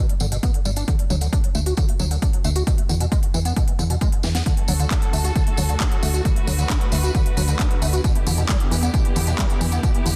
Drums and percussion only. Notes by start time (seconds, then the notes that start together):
0.09 closed hi-hat
0.20 tambourine
0.32 closed hi-hat, tambourine
0.43 kick, closed hi-hat, tambourine
0.54 closed hi-hat
0.65 tambourine
0.76 closed hi-hat, tambourine
0.88 kick, closed hi-hat, tambourine
0.99 closed hi-hat
1.10 tambourine
1.21 closed hi-hat, tambourine
1.33 kick, closed hi-hat, tambourine
1.44 closed hi-hat
1.55 tambourine
1.66 closed hi-hat, tambourine
1.77 kick, closed hi-hat, tambourine
1.89 closed hi-hat
1.99 tambourine
2.11 closed hi-hat, tambourine
2.22 kick, closed hi-hat, tambourine
2.33 closed hi-hat
2.44 tambourine
2.55 closed hi-hat, tambourine
2.67 kick, closed hi-hat, tambourine
2.78 closed hi-hat
2.89 tambourine
3.00 closed hi-hat, tambourine
3.12 kick, closed hi-hat, tambourine
3.23 closed hi-hat
3.34 tambourine
3.45 closed hi-hat, tambourine
3.56 kick, closed hi-hat, tambourine
3.68 closed hi-hat
3.79 tambourine
3.90 closed hi-hat, tambourine
4.01 kick, closed hi-hat, tambourine
4.12 closed hi-hat
4.23 snare, tambourine
4.35 snare, closed hi-hat, tambourine
4.46 kick, closed hi-hat, tambourine
4.57 closed hi-hat
4.68 open hi-hat, tambourine
4.80 closed hi-hat, tambourine
4.91 kick, clap, closed hi-hat, tambourine
5.02 closed hi-hat
5.13 open hi-hat, tambourine
5.24 closed hi-hat, tambourine
5.36 kick, closed hi-hat, tambourine
5.47 closed hi-hat
5.57 open hi-hat, tambourine
5.69 closed hi-hat, tambourine
5.80 kick, clap, closed hi-hat, tambourine
5.92 closed hi-hat
6.03 open hi-hat, tambourine
6.14 closed hi-hat, tambourine
6.25 kick, closed hi-hat, tambourine
6.36 closed hi-hat
6.47 open hi-hat, tambourine
6.59 closed hi-hat, tambourine
6.70 kick, clap, closed hi-hat, tambourine
6.81 closed hi-hat
6.92 open hi-hat, tambourine
7.03 closed hi-hat, tambourine
7.15 kick, closed hi-hat, tambourine
7.26 closed hi-hat
7.37 open hi-hat, tambourine
7.48 closed hi-hat, tambourine
7.59 kick, clap, closed hi-hat, tambourine
7.71 closed hi-hat
7.82 open hi-hat, tambourine
7.93 closed hi-hat, tambourine
8.04 kick, closed hi-hat, tambourine
8.15 closed hi-hat
8.27 open hi-hat, tambourine
8.38 closed hi-hat, tambourine
8.49 kick, clap, closed hi-hat, tambourine
8.60 closed hi-hat
8.71 open hi-hat, tambourine
8.83 closed hi-hat, tambourine
8.94 kick, closed hi-hat, tambourine
9.05 closed hi-hat
9.16 open hi-hat, tambourine
9.27 closed hi-hat, tambourine
9.38 kick, clap, closed hi-hat, tambourine
9.50 closed hi-hat
9.61 open hi-hat, tambourine
9.72 closed hi-hat, tambourine
9.83 kick, closed hi-hat, tambourine
9.95 closed hi-hat
10.06 open hi-hat, tambourine